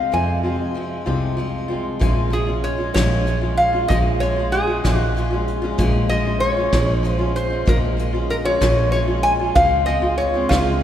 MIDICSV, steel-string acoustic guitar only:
0, 0, Header, 1, 2, 480
1, 0, Start_track
1, 0, Key_signature, -5, "minor"
1, 0, Tempo, 628931
1, 96, Time_signature, 6, 3, 24, 8
1, 8267, End_track
2, 0, Start_track
2, 0, Title_t, "Steel-string acoustic guitar"
2, 0, Program_c, 0, 25
2, 0, Note_on_c, 0, 53, 32
2, 0, Note_on_c, 0, 56, 36
2, 0, Note_on_c, 0, 60, 37
2, 0, Note_on_c, 0, 65, 43
2, 89, Note_off_c, 0, 53, 0
2, 89, Note_on_c, 0, 41, 58
2, 90, Note_off_c, 0, 65, 0
2, 91, Note_off_c, 0, 56, 0
2, 94, Note_off_c, 0, 60, 0
2, 94, Note_on_c, 0, 48, 57
2, 98, Note_on_c, 0, 53, 64
2, 100, Note_on_c, 0, 56, 60
2, 105, Note_on_c, 0, 60, 67
2, 105, Note_on_c, 0, 65, 63
2, 322, Note_off_c, 0, 65, 0
2, 331, Note_off_c, 0, 60, 0
2, 331, Note_on_c, 0, 65, 42
2, 332, Note_off_c, 0, 41, 0
2, 335, Note_off_c, 0, 48, 0
2, 337, Note_off_c, 0, 53, 0
2, 338, Note_off_c, 0, 56, 0
2, 340, Note_on_c, 0, 60, 48
2, 348, Note_on_c, 0, 56, 40
2, 352, Note_on_c, 0, 53, 38
2, 558, Note_off_c, 0, 53, 0
2, 566, Note_off_c, 0, 56, 0
2, 568, Note_on_c, 0, 53, 50
2, 573, Note_off_c, 0, 65, 0
2, 575, Note_on_c, 0, 56, 50
2, 576, Note_off_c, 0, 60, 0
2, 585, Note_on_c, 0, 60, 54
2, 592, Note_on_c, 0, 65, 49
2, 798, Note_off_c, 0, 65, 0
2, 803, Note_off_c, 0, 60, 0
2, 807, Note_off_c, 0, 56, 0
2, 807, Note_on_c, 0, 65, 61
2, 808, Note_off_c, 0, 53, 0
2, 812, Note_on_c, 0, 60, 60
2, 816, Note_on_c, 0, 56, 55
2, 817, Note_on_c, 0, 53, 50
2, 823, Note_on_c, 0, 41, 49
2, 824, Note_on_c, 0, 48, 57
2, 1034, Note_off_c, 0, 53, 0
2, 1044, Note_on_c, 0, 53, 57
2, 1046, Note_off_c, 0, 56, 0
2, 1051, Note_off_c, 0, 65, 0
2, 1053, Note_off_c, 0, 60, 0
2, 1055, Note_on_c, 0, 56, 52
2, 1059, Note_off_c, 0, 41, 0
2, 1059, Note_off_c, 0, 48, 0
2, 1062, Note_on_c, 0, 60, 62
2, 1068, Note_on_c, 0, 65, 65
2, 1274, Note_off_c, 0, 65, 0
2, 1283, Note_on_c, 0, 65, 49
2, 1285, Note_off_c, 0, 60, 0
2, 1289, Note_off_c, 0, 53, 0
2, 1292, Note_off_c, 0, 56, 0
2, 1294, Note_on_c, 0, 60, 39
2, 1301, Note_on_c, 0, 56, 39
2, 1309, Note_on_c, 0, 53, 40
2, 1518, Note_off_c, 0, 53, 0
2, 1522, Note_on_c, 0, 46, 71
2, 1523, Note_off_c, 0, 56, 0
2, 1527, Note_on_c, 0, 53, 74
2, 1529, Note_off_c, 0, 65, 0
2, 1532, Note_on_c, 0, 56, 73
2, 1534, Note_off_c, 0, 60, 0
2, 1537, Note_on_c, 0, 61, 70
2, 1540, Note_on_c, 0, 65, 74
2, 1749, Note_off_c, 0, 53, 0
2, 1758, Note_off_c, 0, 56, 0
2, 1758, Note_on_c, 0, 53, 55
2, 1766, Note_off_c, 0, 61, 0
2, 1767, Note_on_c, 0, 56, 57
2, 1768, Note_off_c, 0, 46, 0
2, 1772, Note_off_c, 0, 65, 0
2, 1776, Note_on_c, 0, 61, 55
2, 1782, Note_on_c, 0, 65, 57
2, 1873, Note_off_c, 0, 65, 0
2, 1882, Note_on_c, 0, 65, 46
2, 1886, Note_off_c, 0, 53, 0
2, 1889, Note_off_c, 0, 61, 0
2, 1890, Note_off_c, 0, 56, 0
2, 1898, Note_on_c, 0, 61, 44
2, 1906, Note_on_c, 0, 56, 36
2, 2113, Note_off_c, 0, 65, 0
2, 2122, Note_on_c, 0, 65, 46
2, 2127, Note_off_c, 0, 61, 0
2, 2136, Note_off_c, 0, 56, 0
2, 2137, Note_on_c, 0, 61, 41
2, 2145, Note_on_c, 0, 56, 37
2, 2242, Note_on_c, 0, 46, 61
2, 2243, Note_off_c, 0, 56, 0
2, 2246, Note_off_c, 0, 61, 0
2, 2248, Note_off_c, 0, 65, 0
2, 2248, Note_on_c, 0, 53, 70
2, 2252, Note_on_c, 0, 56, 70
2, 2256, Note_on_c, 0, 61, 72
2, 2261, Note_on_c, 0, 65, 78
2, 2476, Note_off_c, 0, 53, 0
2, 2485, Note_off_c, 0, 56, 0
2, 2486, Note_on_c, 0, 53, 56
2, 2488, Note_off_c, 0, 46, 0
2, 2494, Note_off_c, 0, 61, 0
2, 2494, Note_on_c, 0, 56, 53
2, 2497, Note_off_c, 0, 65, 0
2, 2502, Note_on_c, 0, 61, 57
2, 2510, Note_on_c, 0, 65, 56
2, 2597, Note_off_c, 0, 65, 0
2, 2606, Note_on_c, 0, 65, 45
2, 2609, Note_off_c, 0, 53, 0
2, 2609, Note_off_c, 0, 61, 0
2, 2614, Note_off_c, 0, 56, 0
2, 2618, Note_on_c, 0, 61, 42
2, 2633, Note_on_c, 0, 56, 35
2, 2835, Note_off_c, 0, 65, 0
2, 2845, Note_on_c, 0, 65, 48
2, 2847, Note_off_c, 0, 61, 0
2, 2857, Note_on_c, 0, 61, 45
2, 2860, Note_off_c, 0, 56, 0
2, 2869, Note_on_c, 0, 56, 35
2, 2969, Note_off_c, 0, 56, 0
2, 2969, Note_off_c, 0, 65, 0
2, 2970, Note_on_c, 0, 46, 65
2, 2975, Note_off_c, 0, 61, 0
2, 2976, Note_on_c, 0, 53, 74
2, 2978, Note_on_c, 0, 56, 73
2, 2983, Note_on_c, 0, 61, 70
2, 2986, Note_on_c, 0, 65, 71
2, 3197, Note_off_c, 0, 53, 0
2, 3206, Note_on_c, 0, 53, 59
2, 3207, Note_off_c, 0, 56, 0
2, 3212, Note_off_c, 0, 46, 0
2, 3213, Note_off_c, 0, 61, 0
2, 3216, Note_on_c, 0, 56, 61
2, 3219, Note_off_c, 0, 65, 0
2, 3222, Note_on_c, 0, 61, 57
2, 3228, Note_on_c, 0, 65, 63
2, 3320, Note_off_c, 0, 65, 0
2, 3329, Note_off_c, 0, 53, 0
2, 3329, Note_on_c, 0, 65, 55
2, 3335, Note_off_c, 0, 56, 0
2, 3335, Note_off_c, 0, 61, 0
2, 3344, Note_on_c, 0, 61, 43
2, 3353, Note_on_c, 0, 56, 42
2, 3558, Note_off_c, 0, 65, 0
2, 3567, Note_on_c, 0, 65, 52
2, 3571, Note_off_c, 0, 61, 0
2, 3581, Note_on_c, 0, 61, 41
2, 3583, Note_off_c, 0, 56, 0
2, 3591, Note_on_c, 0, 56, 39
2, 3690, Note_off_c, 0, 65, 0
2, 3692, Note_off_c, 0, 56, 0
2, 3693, Note_on_c, 0, 46, 68
2, 3697, Note_off_c, 0, 61, 0
2, 3698, Note_on_c, 0, 53, 75
2, 3701, Note_on_c, 0, 56, 77
2, 3706, Note_on_c, 0, 61, 78
2, 3710, Note_on_c, 0, 65, 81
2, 3919, Note_off_c, 0, 53, 0
2, 3928, Note_on_c, 0, 53, 61
2, 3930, Note_off_c, 0, 56, 0
2, 3933, Note_off_c, 0, 46, 0
2, 3935, Note_off_c, 0, 61, 0
2, 3939, Note_on_c, 0, 56, 55
2, 3941, Note_off_c, 0, 65, 0
2, 3944, Note_on_c, 0, 61, 53
2, 3954, Note_on_c, 0, 65, 61
2, 4040, Note_off_c, 0, 65, 0
2, 4049, Note_on_c, 0, 65, 54
2, 4051, Note_off_c, 0, 53, 0
2, 4056, Note_off_c, 0, 56, 0
2, 4056, Note_off_c, 0, 61, 0
2, 4065, Note_on_c, 0, 61, 49
2, 4073, Note_on_c, 0, 56, 45
2, 4278, Note_off_c, 0, 65, 0
2, 4287, Note_on_c, 0, 65, 59
2, 4294, Note_off_c, 0, 61, 0
2, 4303, Note_off_c, 0, 56, 0
2, 4303, Note_on_c, 0, 61, 53
2, 4312, Note_on_c, 0, 56, 45
2, 4410, Note_off_c, 0, 65, 0
2, 4411, Note_off_c, 0, 56, 0
2, 4411, Note_on_c, 0, 46, 73
2, 4415, Note_off_c, 0, 61, 0
2, 4417, Note_on_c, 0, 53, 85
2, 4420, Note_on_c, 0, 56, 82
2, 4424, Note_on_c, 0, 61, 85
2, 4430, Note_on_c, 0, 65, 92
2, 4642, Note_off_c, 0, 53, 0
2, 4650, Note_off_c, 0, 56, 0
2, 4651, Note_on_c, 0, 53, 59
2, 4652, Note_off_c, 0, 46, 0
2, 4659, Note_off_c, 0, 61, 0
2, 4659, Note_on_c, 0, 56, 64
2, 4662, Note_off_c, 0, 65, 0
2, 4669, Note_on_c, 0, 61, 60
2, 4676, Note_on_c, 0, 65, 64
2, 4762, Note_off_c, 0, 65, 0
2, 4771, Note_on_c, 0, 65, 50
2, 4772, Note_off_c, 0, 53, 0
2, 4774, Note_off_c, 0, 61, 0
2, 4776, Note_off_c, 0, 56, 0
2, 4783, Note_on_c, 0, 61, 46
2, 4796, Note_on_c, 0, 56, 38
2, 5003, Note_off_c, 0, 65, 0
2, 5012, Note_on_c, 0, 65, 51
2, 5018, Note_off_c, 0, 61, 0
2, 5025, Note_off_c, 0, 56, 0
2, 5026, Note_on_c, 0, 61, 47
2, 5038, Note_on_c, 0, 56, 36
2, 5133, Note_off_c, 0, 65, 0
2, 5133, Note_on_c, 0, 46, 67
2, 5135, Note_off_c, 0, 56, 0
2, 5136, Note_on_c, 0, 53, 72
2, 5138, Note_off_c, 0, 61, 0
2, 5144, Note_on_c, 0, 56, 68
2, 5147, Note_on_c, 0, 61, 78
2, 5149, Note_on_c, 0, 65, 70
2, 5356, Note_off_c, 0, 53, 0
2, 5365, Note_on_c, 0, 53, 61
2, 5367, Note_off_c, 0, 56, 0
2, 5373, Note_off_c, 0, 46, 0
2, 5374, Note_off_c, 0, 61, 0
2, 5376, Note_on_c, 0, 56, 60
2, 5381, Note_off_c, 0, 65, 0
2, 5383, Note_on_c, 0, 61, 57
2, 5392, Note_on_c, 0, 65, 59
2, 5478, Note_off_c, 0, 65, 0
2, 5488, Note_on_c, 0, 65, 46
2, 5489, Note_off_c, 0, 53, 0
2, 5491, Note_off_c, 0, 61, 0
2, 5495, Note_off_c, 0, 56, 0
2, 5501, Note_on_c, 0, 61, 43
2, 5510, Note_on_c, 0, 56, 39
2, 5717, Note_off_c, 0, 65, 0
2, 5726, Note_on_c, 0, 65, 48
2, 5730, Note_off_c, 0, 61, 0
2, 5738, Note_off_c, 0, 56, 0
2, 5739, Note_on_c, 0, 61, 41
2, 5747, Note_on_c, 0, 56, 39
2, 5843, Note_off_c, 0, 56, 0
2, 5843, Note_on_c, 0, 46, 69
2, 5846, Note_off_c, 0, 61, 0
2, 5849, Note_on_c, 0, 53, 74
2, 5850, Note_off_c, 0, 65, 0
2, 5853, Note_on_c, 0, 56, 70
2, 5855, Note_on_c, 0, 61, 77
2, 5861, Note_on_c, 0, 65, 84
2, 6072, Note_off_c, 0, 53, 0
2, 6081, Note_on_c, 0, 53, 53
2, 6083, Note_off_c, 0, 56, 0
2, 6088, Note_off_c, 0, 46, 0
2, 6092, Note_off_c, 0, 61, 0
2, 6092, Note_on_c, 0, 56, 57
2, 6097, Note_off_c, 0, 65, 0
2, 6101, Note_on_c, 0, 61, 61
2, 6107, Note_on_c, 0, 65, 59
2, 6194, Note_off_c, 0, 65, 0
2, 6203, Note_on_c, 0, 65, 49
2, 6207, Note_off_c, 0, 61, 0
2, 6208, Note_off_c, 0, 53, 0
2, 6213, Note_off_c, 0, 56, 0
2, 6216, Note_on_c, 0, 61, 50
2, 6227, Note_on_c, 0, 56, 46
2, 6438, Note_off_c, 0, 65, 0
2, 6447, Note_on_c, 0, 65, 52
2, 6452, Note_off_c, 0, 61, 0
2, 6460, Note_off_c, 0, 56, 0
2, 6461, Note_on_c, 0, 61, 44
2, 6470, Note_on_c, 0, 56, 42
2, 6566, Note_off_c, 0, 56, 0
2, 6567, Note_on_c, 0, 46, 71
2, 6570, Note_off_c, 0, 65, 0
2, 6570, Note_on_c, 0, 53, 69
2, 6572, Note_off_c, 0, 61, 0
2, 6575, Note_on_c, 0, 56, 80
2, 6581, Note_on_c, 0, 61, 66
2, 6581, Note_on_c, 0, 65, 73
2, 6800, Note_off_c, 0, 53, 0
2, 6808, Note_off_c, 0, 56, 0
2, 6809, Note_on_c, 0, 53, 50
2, 6811, Note_off_c, 0, 46, 0
2, 6816, Note_off_c, 0, 61, 0
2, 6818, Note_off_c, 0, 65, 0
2, 6818, Note_on_c, 0, 56, 59
2, 6825, Note_on_c, 0, 61, 54
2, 6833, Note_on_c, 0, 65, 58
2, 6917, Note_off_c, 0, 65, 0
2, 6926, Note_on_c, 0, 65, 47
2, 6932, Note_off_c, 0, 53, 0
2, 6932, Note_off_c, 0, 61, 0
2, 6936, Note_off_c, 0, 56, 0
2, 6941, Note_on_c, 0, 61, 42
2, 6951, Note_on_c, 0, 56, 38
2, 7161, Note_off_c, 0, 65, 0
2, 7170, Note_on_c, 0, 65, 49
2, 7174, Note_off_c, 0, 61, 0
2, 7183, Note_off_c, 0, 56, 0
2, 7183, Note_on_c, 0, 61, 41
2, 7195, Note_on_c, 0, 56, 41
2, 7290, Note_on_c, 0, 49, 69
2, 7292, Note_off_c, 0, 56, 0
2, 7292, Note_off_c, 0, 65, 0
2, 7294, Note_on_c, 0, 53, 71
2, 7299, Note_off_c, 0, 61, 0
2, 7301, Note_on_c, 0, 56, 74
2, 7302, Note_on_c, 0, 60, 64
2, 7306, Note_on_c, 0, 65, 81
2, 7513, Note_off_c, 0, 53, 0
2, 7522, Note_on_c, 0, 53, 61
2, 7524, Note_off_c, 0, 56, 0
2, 7531, Note_off_c, 0, 60, 0
2, 7532, Note_off_c, 0, 49, 0
2, 7533, Note_on_c, 0, 56, 59
2, 7535, Note_off_c, 0, 65, 0
2, 7541, Note_on_c, 0, 60, 63
2, 7544, Note_on_c, 0, 65, 64
2, 7638, Note_off_c, 0, 65, 0
2, 7647, Note_on_c, 0, 65, 50
2, 7648, Note_off_c, 0, 53, 0
2, 7651, Note_off_c, 0, 60, 0
2, 7654, Note_off_c, 0, 56, 0
2, 7660, Note_on_c, 0, 60, 50
2, 7669, Note_on_c, 0, 56, 37
2, 7881, Note_off_c, 0, 65, 0
2, 7890, Note_on_c, 0, 65, 50
2, 7893, Note_off_c, 0, 60, 0
2, 7902, Note_off_c, 0, 56, 0
2, 7903, Note_on_c, 0, 60, 47
2, 7913, Note_on_c, 0, 56, 45
2, 8008, Note_on_c, 0, 49, 74
2, 8011, Note_off_c, 0, 56, 0
2, 8012, Note_off_c, 0, 65, 0
2, 8015, Note_off_c, 0, 60, 0
2, 8016, Note_on_c, 0, 53, 75
2, 8020, Note_on_c, 0, 56, 77
2, 8024, Note_on_c, 0, 60, 77
2, 8025, Note_on_c, 0, 65, 73
2, 8241, Note_off_c, 0, 53, 0
2, 8252, Note_off_c, 0, 49, 0
2, 8252, Note_off_c, 0, 56, 0
2, 8259, Note_off_c, 0, 60, 0
2, 8260, Note_off_c, 0, 65, 0
2, 8267, End_track
0, 0, End_of_file